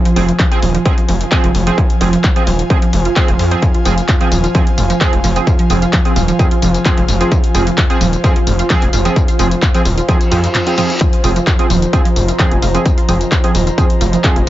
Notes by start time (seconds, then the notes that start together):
Already playing: F3 F4 C5 F5 G#5
0.05 F3, closed hi-hat
0.16 F1 F3 C4 G#4, open hi-hat
0.28 F3, closed hi-hat
0.39 F3, kick, clap, closed hi-hat
0.51 F3 C4 G#4, closed hi-hat
0.62 D#1 F3, open hi-hat
0.75 F3, closed hi-hat
0.85 F3 C4 G#4, kick, closed hi-hat
0.98 F3, closed hi-hat
1.09 F1 F3, open hi-hat
1.21 closed hi-hat
1.32 F3 C4 G#4, kick, clap, closed hi-hat
1.44 F1 F3, closed hi-hat
1.55 F1, open hi-hat
1.67 F3 C4 G#4, closed hi-hat
1.78 F3, kick, closed hi-hat
1.90 closed hi-hat
2.01 F1 F3 C4 G#4, open hi-hat
2.13 F3, closed hi-hat
2.24 kick, clap, closed hi-hat
2.36 F3 C4 G#4, closed hi-hat
2.47 D#1 F3, open hi-hat
2.59 closed hi-hat
2.70 F3 C4 G#4, kick, closed hi-hat
2.82 F3, closed hi-hat
2.93 F1 F3, open hi-hat
3.05 F4, closed hi-hat
3.16 F3 C4 G#4, kick, clap, closed hi-hat
3.28 F1 F3, closed hi-hat
3.39 F2 F4, open hi-hat
3.51 F3 C4 G#4, closed hi-hat
3.62 kick, closed hi-hat, mid tom, tambourine
3.74 F4, closed hi-hat
3.85 F1 F3 C4 G#4, mid tom, open hi-hat, tambourine
3.98 closed hi-hat, tambourine
4.08 F4, kick, clap, closed hi-hat, mid tom, tambourine
4.21 F3 C4 G#4, closed hi-hat
4.32 D#1, mid tom, open hi-hat, tambourine
4.44 F4, closed hi-hat, tambourine
4.55 F3 C4 G#4, kick, closed hi-hat, mid tom, tambourine
4.67 closed hi-hat
4.78 F1 F4, mid tom, open hi-hat, tambourine
4.90 F3, closed hi-hat, tambourine
5.01 F3 C4 G#4, kick, clap, closed hi-hat, mid tom, tambourine
5.13 F1 F4, closed hi-hat
5.24 F1 F3, mid tom, open hi-hat, tambourine
5.36 F3 C4 G#4, closed hi-hat, tambourine
5.47 F4, kick, closed hi-hat, mid tom, tambourine
5.59 F3, closed hi-hat
5.70 F1 F3 C4 G#4, mid tom, open hi-hat, tambourine
5.82 F4, closed hi-hat, tambourine
5.93 F3, kick, clap, closed hi-hat, mid tom, tambourine
6.05 F3 C4 G#4, closed hi-hat
6.16 D#1 F4, mid tom, open hi-hat, tambourine
6.28 F3, closed hi-hat, tambourine
6.39 F3 C4 G#4, kick, closed hi-hat, mid tom, tambourine
6.51 F4, closed hi-hat
6.62 F1 F3, mid tom, open hi-hat, tambourine
6.74 closed hi-hat, tambourine
6.85 F3 C4 F4 G#4, kick, clap, closed hi-hat, mid tom, tambourine
6.97 F1 F3, closed hi-hat
7.08 F1, mid tom, open hi-hat, tambourine
7.21 F3 C4 F4 G#4, closed hi-hat, tambourine
7.32 F3, kick, closed hi-hat, mid tom, tambourine
7.44 closed hi-hat
7.55 F1 F3 C4 F4 G#4, mid tom, open hi-hat, tambourine
7.67 F3, closed hi-hat, tambourine
7.78 kick, clap, closed hi-hat, mid tom, tambourine
7.90 F3 C4 F4 G#4, closed hi-hat
8.01 D#1 F3, mid tom, open hi-hat, tambourine
8.13 closed hi-hat, tambourine
8.24 F3 C4 F4 G#4, kick, closed hi-hat, mid tom, tambourine
8.36 F3, closed hi-hat
8.47 F1, mid tom, open hi-hat, tambourine
8.59 F4, closed hi-hat, tambourine
8.70 F3 C4 G#4, kick, clap, closed hi-hat, mid tom, tambourine
8.82 F1, closed hi-hat
8.93 F1 F4, mid tom, open hi-hat, tambourine
9.05 F3 C4 G#4, closed hi-hat, tambourine
9.16 kick, closed hi-hat, mid tom, tambourine
9.28 F4, closed hi-hat, tambourine
9.39 F1 F3 C4 G#4, mid tom, open hi-hat, tambourine
9.51 closed hi-hat, tambourine
9.62 F4, kick, clap, closed hi-hat, mid tom, tambourine
9.74 F3 C4 G#4, closed hi-hat, tambourine
9.85 D#1, mid tom, open hi-hat, tambourine
9.98 F4, closed hi-hat, tambourine
10.08 F3 C4 G#4, kick, closed hi-hat, mid tom, tambourine, reverse cymbal
10.21 closed hi-hat, tambourine
10.31 F2 F3 C4 F4 G#4, mid tom, open hi-hat, tambourine
10.44 F3, closed hi-hat, tambourine
10.55 clap, closed hi-hat, mid tom, tambourine
10.67 F3 C4 F4 G#4, closed hi-hat, tambourine
10.78 F3 C4 G#4, mid tom, open hi-hat, tambourine
10.90 closed hi-hat, tambourine
11.01 F3, kick, closed hi-hat, mid tom, tambourine
11.13 closed hi-hat
11.24 F1 F3 C4 F4 G#4, mid tom, open hi-hat, tambourine
11.35 F3 D#5, closed hi-hat, tambourine
11.43 A#5
11.47 kick, clap, closed hi-hat, mid tom, tambourine
11.59 F3 C4 F4 G#4, closed hi-hat
11.70 D#1 F3, mid tom, open hi-hat, tambourine
11.82 closed hi-hat, tambourine
11.93 F3 C4 F4 G#4, kick, closed hi-hat, mid tom, tambourine
12.05 F3, closed hi-hat
12.16 F1, mid tom, open hi-hat, tambourine
12.28 F4, closed hi-hat, tambourine
12.39 F3 C4 G#4, kick, clap, closed hi-hat, mid tom, tambourine
12.51 F1, closed hi-hat
12.62 F1 F4, mid tom, open hi-hat, tambourine
12.75 F3 C4 G#4, closed hi-hat, tambourine
12.86 kick, closed hi-hat, mid tom, tambourine
12.98 F4, closed hi-hat
13.09 F1 F3 C4 G#4, mid tom, open hi-hat, tambourine
13.21 closed hi-hat, tambourine
13.32 F4, kick, clap, closed hi-hat, mid tom, tambourine
13.44 F3 C4 G#4, closed hi-hat
13.55 D#1, mid tom, open hi-hat, tambourine
13.67 F4, closed hi-hat, tambourine
13.78 F3 C4 G#4, kick, closed hi-hat, mid tom, tambourine
13.90 closed hi-hat
14.01 F1 F4, mid tom, open hi-hat, tambourine
14.13 F3, closed hi-hat, tambourine
14.24 F3 C4 G#4, kick, clap, closed hi-hat, mid tom, tambourine
14.36 F1 F4, closed hi-hat